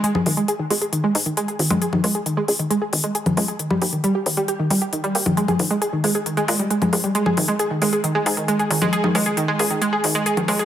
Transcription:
<<
  \new Staff \with { instrumentName = "Synth pluck" } { \clef bass \time 4/4 \key cis \dorian \tempo 4 = 135 gis16 gis'16 dis16 gis16 gis'16 dis16 gis16 gis'16 dis16 gis16 gis'16 dis16 gis16 gis'16 dis16 gis16 | gis'16 dis16 gis16 gis'16 dis16 gis16 gis'16 dis16 gis16 gis'16 dis16 gis16 gis'16 dis16 gis16 gis'16 | dis16 g16 g'16 dis16 g16 g'16 dis16 g16 g'16 dis16 g16 g'16 dis16 g16 g'16 dis16 | gis16 gis'16 dis16 gis16 gis'16 dis16 gis16 gis'16 dis16 gis16 gis16 g16 gis16 gis16 gis16 g16 |
gis16 gis'16 dis16 gis16 gis'16 dis16 gis16 gis'16 dis16 gis16 gis'16 dis16 gis16 gis'16 dis16 gis16 | gis'16 dis16 gis16 gis'16 dis16 gis16 gis'16 dis16 gis16 gis'16 dis16 gis16 gis'16 dis16 gis16 gis'16 | }
  \new Staff \with { instrumentName = "Analog synth bass" } { \clef bass \time 4/4 \key cis \dorian r8 gis,,8 r8 gis,,8 r8 gis,8 r8 gis,,8 | r8 cis,8 r8 cis,8 r8 gis,,8 r8 cis,8 | r8 dis,8 r8 dis,8 r8 dis,,8 r8 dis,8 | r8 ais,,8 r8 ais,,8 r8 ais,8 r8 ais,,8 |
r8 gis,,8 r8 gis,,8 r8 gis,8 r8 gis,,8 | r8 cis,8 r8 cis,8 r8 gis,,8 r8 cis,8 | }
  \new DrumStaff \with { instrumentName = "Drums" } \drummode { \time 4/4 hh16 cgho16 hho16 hh16 hh8 hho16 hh16 hh8 hho16 hh16 hh16 hh16 hho16 <cgho hh>16 | hh16 cgho16 hho16 hh16 hh8 hho16 hh16 hh8 hho16 hh16 hh16 <cgho hh>16 hho16 hh16 | hh16 cgho16 hho16 hh16 hh8 hho16 hh16 hh8 hho16 hh16 hh16 hh16 hho16 <cgho hh>16 | hh16 <cgho hh>16 hho16 hh16 hh8 hho16 hh16 hh16 hh16 hho16 hh16 hh16 <cgho hh>16 hho16 hh16 |
hh16 cgho16 hho16 hh16 hh8 hho16 hh16 hh8 hho16 hh16 hh16 hh16 hho16 <cgho hh>16 | hh16 cgho16 hho16 hh16 hh8 hho16 hh16 hh8 hho16 hh16 hh16 <cgho hh>16 hho16 hh16 | }
>>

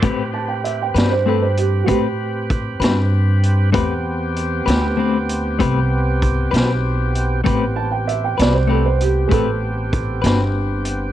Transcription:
<<
  \new Staff \with { instrumentName = "Upright piano" } { \time 12/8 \key a \minor \tempo 4. = 65 r8 a''16 g''16 e''16 g''16 d''16 c''16 a'16 c''16 g'8 <fis' g'>2. | r1. | r8 a''16 g''16 e''16 g''16 d''16 c''16 a'16 c''16 g'8 <gis' a'>2. | }
  \new Staff \with { instrumentName = "Clean electric guitar" } { \time 12/8 \key a \minor <a c' g' b'>8 r4 <c' g' b'>8 <a c' g' b'>8 r8 <a c' g' b'>8 r4 <c' g' b'>8 r4 | <a c' g' b'>8 r4 <c' g' b'>8 <a c' g' b'>8 r8 <a c' g' b'>8 r4 <c' g' b'>8 r4 | <a c' g' b'>8 r4 <c' g' b'>8 <a c' g' b'>8 r8 <a c' g' b'>8 r4 <c' g' b'>8 r4 | }
  \new Staff \with { instrumentName = "Tonewheel organ" } { \time 12/8 \key a \minor <c' g' b'>1. | <b c' g'>1. | <b c' g'>1. | }
  \new Staff \with { instrumentName = "Upright bass" } { \clef bass \time 12/8 \key a \minor a,4. g,4. a,4. g,4. | e,4. d,4. c,4. b,,4. | a,,4. c,4. a,,4. g,,4. | }
  \new DrumStaff \with { instrumentName = "Drums" } \drummode { \time 12/8 <hh bd>4 hh8 <hh sn>4 hh8 <hh bd>4 <hh bd>8 <hh sn>4 hh8 | <hh bd>4 hh8 <hh sn>4 hh8 <hh bd>4 <hh bd>8 <hh sn>4 hh8 | <hh bd>4 hh8 <hh sn>4 hh8 <hh bd>4 <hh bd>8 <hh sn>4 hh8 | }
>>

